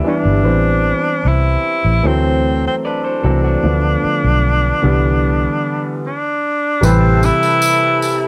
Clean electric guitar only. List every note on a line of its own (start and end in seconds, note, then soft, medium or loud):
0.00 0.42 E4 soft
0.00 0.42 G4 medium
2.85 3.04 B4 medium
2.85 3.03 D5 medium
3.04 3.22 A4 soft
3.04 3.23 C5 medium
3.24 3.43 F#4 medium
3.24 3.43 A4 medium
3.44 3.82 D4 medium
3.44 3.82 F#4 medium